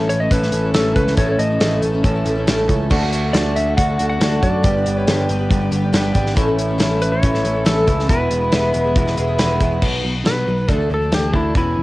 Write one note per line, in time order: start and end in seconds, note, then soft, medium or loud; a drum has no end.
0.00 0.28 A1 medium
0.00 0.31 A2 loud
0.00 0.31 E3 medium
0.00 0.32 A3 medium
0.00 0.32 C#4 medium
0.00 0.11 A4 medium
0.09 0.20 A3 medium
0.09 0.21 C#4 medium
0.09 0.20 E4 medium
0.09 0.19 A4 medium
0.09 0.20 C#5 medium
0.09 closed hi-hat medium
0.20 0.43 A3 soft
0.20 0.43 C#4 soft
0.20 0.41 E4 soft
0.20 0.41 A4 medium
0.20 0.30 D#5 loud
0.31 0.51 A1 loud
0.31 0.75 A2 medium
0.31 0.73 E3 loud
0.31 0.55 A3 loud
0.31 0.53 C#4 loud
0.31 0.52 A4 loud
0.31 0.74 B4 medium
0.31 kick loud
0.31 closed hi-hat loud
0.42 0.52 A3 soft
0.42 0.53 C#4 soft
0.42 0.53 E4 soft
0.42 0.53 A4 soft
0.42 snare soft
0.52 0.73 A1 medium
0.52 0.64 A3 medium
0.52 0.64 C#4 medium
0.52 0.63 E4 medium
0.52 closed hi-hat medium
0.56 0.62 A4 medium
0.63 0.74 A3 soft
0.63 0.74 C#4 soft
0.63 0.75 E4 soft
0.63 0.74 A4 medium
0.74 0.94 A1 medium
0.74 0.96 A2 medium
0.74 0.97 E3 medium
0.74 0.95 A3 medium
0.74 0.96 C#4 medium
0.74 0.97 E4 medium
0.74 0.95 A4 medium
0.74 0.97 A4 medium
0.74 snare loud
0.74 closed hi-hat medium
0.95 1.16 C#2 medium
0.95 1.18 A3 medium
0.95 1.18 C#4 medium
0.95 1.12 E4 medium
0.95 1.19 E4 medium
0.95 1.12 A4 medium
0.95 1.19 A4 medium
0.95 1.16 B4 medium
0.95 1.13 C#5 medium
0.95 kick medium
0.95 closed hi-hat medium
1.07 snare soft
1.17 1.38 A1 loud
1.17 1.29 A2 medium
1.17 1.29 E3 medium
1.17 1.29 A3 medium
1.17 1.29 C#4 medium
1.17 1.82 E4 medium
1.17 1.27 E4 medium
1.17 1.83 A4 medium
1.17 1.26 A4 medium
1.17 1.83 C#5 medium
1.17 1.30 C#5 medium
1.17 kick loud
1.17 closed hi-hat medium
1.28 1.52 A3 soft
1.28 1.51 C#4 soft
1.28 1.50 E4 soft
1.28 1.49 A4 medium
1.28 1.39 C#5 medium
1.38 1.59 A1 medium
1.38 1.60 A3 medium
1.38 1.60 C#4 medium
1.38 1.62 A4 medium
1.38 1.80 D#5 medium
1.38 closed hi-hat medium
1.50 1.61 A3 soft
1.50 1.61 C#4 soft
1.50 1.61 E4 soft
1.50 1.61 A4 soft
1.60 1.81 A1 medium
1.60 1.83 A2 medium
1.60 1.83 E3 medium
1.60 1.80 A3 medium
1.60 1.81 C#4 medium
1.60 1.82 E4 medium
1.60 1.83 A4 medium
1.60 snare loud
1.60 closed hi-hat medium
1.82 2.02 A1 medium
1.82 1.93 A3 medium
1.82 1.93 C#4 medium
1.82 1.92 E4 medium
1.82 1.91 A4 medium
1.82 closed hi-hat medium
1.92 2.16 A3 soft
1.92 2.15 C#4 medium
1.92 2.14 E4 medium
1.92 2.13 A4 medium
2.03 2.24 A1 medium
2.03 2.47 A2 medium
2.03 2.45 E3 medium
2.03 2.26 A3 loud
2.03 2.25 C#4 loud
2.03 2.23 A4 loud
2.03 kick loud
2.03 closed hi-hat medium
2.14 2.24 A3 soft
2.14 2.25 C#4 soft
2.14 2.26 E4 medium
2.14 2.26 A4 medium
2.25 2.46 A1 medium
2.25 2.37 A3 medium
2.25 2.36 C#4 medium
2.25 2.35 E4 medium
2.25 2.34 A4 medium
2.25 closed hi-hat medium
2.35 2.47 A3 medium
2.35 2.48 C#4 medium
2.35 2.48 E4 medium
2.35 2.47 A4 medium
2.47 2.68 A1 medium
2.47 2.69 A2 medium
2.47 2.70 E3 loud
2.47 2.67 A3 medium
2.47 2.67 C#4 loud
2.47 2.69 E4 loud
2.47 2.70 A4 loud
2.47 snare loud
2.47 closed hi-hat loud
2.68 2.89 C#2 medium
2.68 2.80 A3 medium
2.68 2.80 C#4 medium
2.68 2.80 E4 medium
2.68 2.86 E4 medium
2.68 2.86 A4 medium
2.68 2.78 A4 medium
2.68 2.86 C#5 medium
2.68 kick medium
2.68 closed hi-hat medium
2.80 2.89 A3 soft
2.80 2.91 C#4 soft
2.80 2.91 E4 soft
2.80 2.91 A4 medium
2.90 3.31 D2 medium
2.90 3.01 D3 medium
2.90 3.02 A3 medium
2.90 3.02 D4 medium
2.90 3.56 F#4 medium
2.90 3.01 F#4 medium
2.90 3.56 A4 medium
2.90 2.99 A4 medium
2.90 3.56 D5 medium
2.90 kick loud
2.90 crash medium
3.00 3.25 D4 soft
3.00 3.23 F#4 soft
3.00 3.21 A4 medium
3.11 3.33 A3 medium
3.11 3.34 D4 medium
3.11 3.34 F#4 medium
3.11 closed hi-hat medium
3.22 3.34 D4 soft
3.22 3.35 F#4 medium
3.22 3.34 A4 soft
3.33 3.74 D2 medium
3.33 3.56 D3 medium
3.33 3.54 A3 medium
3.33 3.56 D4 medium
3.33 3.57 F#4 medium
3.33 3.57 A4 medium
3.33 3.56 D5 medium
3.33 snare loud
3.33 closed hi-hat medium
3.56 3.67 A3 medium
3.56 3.68 D4 medium
3.56 3.67 F#4 medium
3.56 3.65 A4 medium
3.56 3.77 E5 medium
3.56 closed hi-hat medium
3.67 3.90 D4 soft
3.67 3.89 F#4 soft
3.67 3.87 A4 soft
3.76 3.98 D2 medium
3.76 4.18 D3 medium
3.76 3.99 A3 medium
3.76 3.98 D4 loud
3.76 3.97 F#4 loud
3.76 4.08 F#5 medium
3.76 kick loud
3.76 closed hi-hat loud
3.89 3.99 D4 soft
3.89 4.00 F#4 medium
3.89 4.00 A4 soft
3.99 4.19 D2 medium
3.99 4.10 A3 medium
3.99 4.11 D4 medium
3.99 4.10 F#4 medium
3.99 4.08 A4 medium
3.99 closed hi-hat medium
4.09 4.21 D4 soft
4.09 4.21 F#4 soft
4.09 4.21 A4 soft
4.09 4.43 F#5 loud
4.20 4.40 D2 medium
4.20 4.42 D3 medium
4.20 4.41 A3 medium
4.20 4.42 D4 medium
4.20 4.42 F#4 medium
4.20 4.44 A4 medium
4.20 snare loud
4.20 closed hi-hat loud
4.42 4.62 F#2 medium
4.42 4.63 A3 medium
4.42 4.63 D4 medium
4.42 4.59 F#4 medium
4.42 4.64 F#4 medium
4.42 4.59 A4 medium
4.42 4.65 A4 medium
4.42 4.59 C#5 medium
4.42 4.99 D5 medium
4.42 kick medium
4.42 closed hi-hat medium
4.62 4.84 G1 medium
4.62 5.06 G2 medium
4.62 5.07 D3 medium
4.62 4.75 G3 medium
4.62 4.84 B3 medium
4.62 4.75 D4 medium
4.62 5.29 G4 medium
4.62 4.75 G4 medium
4.62 5.29 B4 medium
4.62 4.73 B4 medium
4.62 5.29 D5 medium
4.62 kick loud
4.62 closed hi-hat medium
4.75 4.98 D4 soft
4.75 4.97 G4 soft
4.75 4.95 B4 medium
4.84 5.06 G1 medium
4.84 5.05 G3 medium
4.84 5.06 B3 medium
4.84 5.07 D4 medium
4.84 5.08 G4 medium
4.84 closed hi-hat medium
4.96 5.07 D4 soft
4.96 5.07 G4 medium
4.96 5.07 B4 medium
4.96 5.25 C#5 medium
5.07 5.27 G1 medium
5.07 5.28 G3 loud
5.07 5.49 B3 medium
5.07 5.29 D4 medium
5.07 5.30 G4 loud
5.07 5.30 B4 medium
5.07 snare loud
5.07 closed hi-hat medium
5.29 5.49 G1 medium
5.29 5.40 G3 medium
5.29 5.40 D4 medium
5.29 5.40 G4 medium
5.29 5.38 B4 medium
5.29 closed hi-hat medium
5.39 5.62 D4 medium
5.39 5.60 G4 medium
5.39 5.59 B4 medium
5.49 5.71 G1 medium
5.49 5.93 G2 medium
5.49 5.94 D3 medium
5.49 5.72 G3 loud
5.49 5.71 B3 medium
5.49 5.71 D4 loud
5.49 5.70 G4 loud
5.49 kick loud
5.49 closed hi-hat medium
5.60 5.71 D4 medium
5.60 5.72 G4 medium
5.60 5.71 B4 medium
5.71 5.92 G1 medium
5.71 5.83 G3 medium
5.71 5.92 B3 medium
5.71 5.83 D4 medium
5.71 5.83 G4 medium
5.71 5.81 B4 medium
5.71 closed hi-hat medium
5.82 5.92 D4 soft
5.82 5.93 G4 medium
5.82 5.93 B4 medium
5.93 6.14 G1 medium
5.93 6.13 G3 loud
5.93 6.14 B3 medium
5.93 6.14 D4 loud
5.93 6.15 G4 loud
5.93 6.16 B4 loud
5.93 snare loud
5.93 closed hi-hat loud
6.14 6.35 G#1 medium
6.14 6.36 G3 medium
6.14 6.36 B3 medium
6.14 6.37 D4 medium
6.14 6.32 G4 medium
6.14 6.37 G4 medium
6.14 6.32 B4 medium
6.14 6.37 B4 medium
6.14 6.32 D5 loud
6.14 kick medium
6.14 closed hi-hat medium
6.26 snare soft
6.36 6.77 A1 loud
6.36 6.47 A2 medium
6.36 6.47 E3 medium
6.36 6.48 A3 medium
6.36 6.47 C#4 medium
6.36 6.47 E4 loud
6.36 7.02 E4 medium
6.36 7.02 A4 medium
6.36 6.45 A4 medium
6.36 7.02 C#5 medium
6.36 kick loud
6.36 closed hi-hat loud
6.46 6.70 A3 soft
6.46 6.68 C#4 medium
6.46 6.67 E4 medium
6.46 6.66 A4 medium
6.56 6.77 A3 medium
6.56 6.78 C#4 medium
6.56 6.80 E4 medium
6.56 closed hi-hat medium
6.68 6.78 A3 medium
6.68 6.79 C#4 medium
6.68 6.78 E4 medium
6.68 6.79 A4 medium
6.78 7.20 A1 medium
6.78 7.01 A2 medium
6.78 7.01 E3 loud
6.78 6.99 A3 medium
6.78 7.00 C#4 loud
6.78 7.01 E4 loud
6.78 7.02 A4 loud
6.78 snare loud
6.78 closed hi-hat loud
7.00 7.12 A3 medium
7.00 7.12 C#4 medium
7.00 7.11 E4 medium
7.00 7.09 A4 medium
7.00 7.12 B4 medium
7.00 closed hi-hat medium
7.11 7.34 A3 soft
7.11 7.33 C#4 soft
7.11 7.33 E4 medium
7.11 7.32 A4 soft
7.11 7.63 C#5 loud
7.22 7.43 A1 loud
7.22 7.66 A2 loud
7.22 7.64 E3 loud
7.22 7.44 A3 loud
7.22 7.43 C#4 loud
7.22 7.42 E4 loud
7.22 kick loud
7.22 closed hi-hat loud
7.33 7.42 A3 soft
7.33 7.43 C#4 medium
7.33 7.44 E4 medium
7.33 7.44 A4 medium
7.33 snare soft
7.43 7.65 A1 medium
7.43 7.55 A3 medium
7.43 7.55 C#4 medium
7.43 7.54 E4 medium
7.43 7.53 A4 medium
7.43 closed hi-hat medium
7.54 7.65 A3 soft
7.54 7.65 C#4 soft
7.54 7.66 E4 soft
7.54 7.66 A4 medium
7.65 7.86 A1 medium
7.65 7.87 A2 medium
7.65 7.88 E3 medium
7.65 7.86 A3 medium
7.65 7.87 C#4 medium
7.65 7.88 E4 medium
7.65 8.07 A4 medium
7.65 7.88 A4 medium
7.65 snare loud
7.65 closed hi-hat loud
7.87 8.08 C#2 medium
7.87 7.98 A3 medium
7.87 7.99 C#4 medium
7.87 8.04 E4 medium
7.87 7.98 E4 medium
7.87 8.04 A4 medium
7.87 7.97 A4 medium
7.87 8.04 B4 medium
7.87 kick medium
7.87 closed hi-hat medium
7.98 8.10 A3 soft
7.98 8.10 C#4 soft
7.98 8.10 E4 soft
7.98 8.09 A4 soft
7.98 snare soft
8.08 8.29 E1 medium
8.08 8.52 E2 medium
8.08 8.52 B2 loud
8.08 8.20 E3 medium
8.08 8.21 G#3 medium
8.08 8.21 B3 medium
8.08 8.74 E4 medium
8.08 8.20 E4 medium
8.08 8.74 G#4 medium
8.08 8.18 G#4 medium
8.08 9.57 B4 medium
8.08 8.75 B4 medium
8.08 kick loud
8.08 closed hi-hat loud
8.20 8.43 B3 soft
8.20 8.42 E4 soft
8.20 8.40 G#4 medium
8.30 8.51 E1 medium
8.30 8.50 E3 medium
8.30 8.51 G#3 medium
8.30 8.52 B3 medium
8.30 8.53 E4 medium
8.30 closed hi-hat medium
8.41 8.52 B3 soft
8.41 8.53 E4 soft
8.41 8.52 G#4 medium
8.52 8.73 E1 medium
8.52 8.74 E3 medium
8.52 8.72 G#3 medium
8.52 8.73 B3 medium
8.52 8.74 E4 medium
8.52 8.75 G#4 medium
8.52 snare loud
8.52 closed hi-hat medium
8.73 8.94 E1 medium
8.73 8.84 G#3 medium
8.73 8.85 B3 medium
8.73 8.85 E4 medium
8.73 8.83 G#4 medium
8.73 closed hi-hat medium
8.84 9.07 B3 medium
8.84 9.06 E4 medium
8.84 9.04 G#4 medium
8.95 9.16 E1 medium
8.95 9.39 E2 medium
8.95 9.39 B2 medium
8.95 9.17 E3 medium
8.95 9.17 G#3 loud
8.95 9.16 B3 medium
8.95 9.15 E4 loud
8.95 kick loud
8.95 closed hi-hat medium
9.05 9.16 B3 soft
9.05 9.17 E4 medium
9.05 9.17 G#4 medium
9.05 snare soft
9.16 9.38 E1 medium
9.16 9.37 E3 medium
9.16 9.28 G#3 medium
9.16 9.28 B3 medium
9.16 9.27 E4 medium
9.16 9.26 G#4 medium
9.16 9.38 E5 medium
9.16 closed hi-hat medium
9.27 9.38 B3 soft
9.27 9.39 E4 medium
9.27 9.39 G#4 medium
9.38 9.59 E1 medium
9.38 9.60 E3 loud
9.38 9.59 G#3 loud
9.38 9.60 B3 loud
9.38 9.61 E4 loud
9.38 9.62 G#4 loud
9.38 9.79 B5 medium
9.38 snare loud
9.38 closed hi-hat medium
9.60 9.81 E1 medium
9.60 9.81 E3 medium
9.60 9.71 G#3 medium
9.60 9.72 B3 medium
9.60 9.77 E4 medium
9.60 9.72 E4 medium
9.60 9.77 G#4 medium
9.60 9.70 G#4 medium
9.60 9.77 B4 medium
9.60 kick medium
9.60 closed hi-hat medium
9.71 9.83 B3 soft
9.71 9.83 E4 soft
9.71 9.82 G#4 soft
9.82 10.02 B1 medium
9.82 10.15 B2 medium
9.82 10.15 F#3 medium
9.82 10.16 B3 medium
9.82 10.15 D#4 medium
9.82 10.14 B4 medium
9.82 kick loud
9.82 crash loud
10.03 10.23 B1 medium
10.03 10.23 B2 medium
10.03 10.23 F#3 medium
10.15 10.25 B3 soft
10.15 10.26 D#4 soft
10.15 10.26 B4 soft
10.25 10.45 B1 medium
10.25 10.47 B2 medium
10.25 10.46 F#3 medium
10.25 10.47 B3 medium
10.25 10.48 D#4 medium
10.25 10.72 B4 medium
10.25 10.48 B4 medium
10.25 snare loud
10.25 closed hi-hat medium
10.47 10.67 B1 medium
10.47 10.67 B2 medium
10.47 10.58 F#3 soft
10.47 10.59 B3 medium
10.47 10.59 D#4 medium
10.47 10.57 B4 medium
10.58 10.70 B3 soft
10.58 10.70 D#4 soft
10.58 10.69 B4 medium
10.68 10.88 D2 medium
10.68 10.80 D3 medium
10.68 10.81 E3 medium
10.68 10.81 A3 medium
10.68 10.81 D4 medium
10.68 10.89 A4 medium
10.68 10.79 A4 medium
10.68 kick loud
10.68 closed hi-hat medium
10.80 10.90 A3 soft
10.80 10.91 D4 soft
10.80 10.91 A4 soft
10.90 11.10 D2 medium
10.90 11.10 D3 medium
10.90 11.01 E3 medium
10.90 11.02 A3 medium
10.90 11.02 D4 medium
10.90 11.01 A4 medium
10.94 11.13 A4 medium
11.02 11.13 A3 soft
11.02 11.13 D4 soft
11.02 11.13 A4 soft
11.12 11.32 D2 medium
11.12 11.35 D3 medium
11.12 11.33 E3 medium
11.12 11.34 A3 medium
11.12 11.35 D4 medium
11.12 11.34 G4 medium
11.12 11.36 A4 medium
11.12 snare loud
11.12 closed hi-hat medium
11.33 11.53 D2 medium
11.33 11.54 D3 medium
11.33 11.55 E3 medium
11.33 11.56 A3 medium
11.33 11.57 D4 medium
11.33 11.56 E4 medium
11.33 kick medium
11.37 11.57 A4 medium
11.55 11.75 E1 medium
11.55 11.75 E2 medium
11.55 11.76 B2 medium
11.55 11.83 E3 medium
11.55 11.83 B3 medium
11.55 11.83 C#4 medium
11.55 11.83 E4 medium
11.55 kick loud
11.55 closed hi-hat medium
11.59 11.83 G#4 medium
11.76 11.83 E1 medium
11.76 11.83 E2 medium
11.76 11.83 B2 medium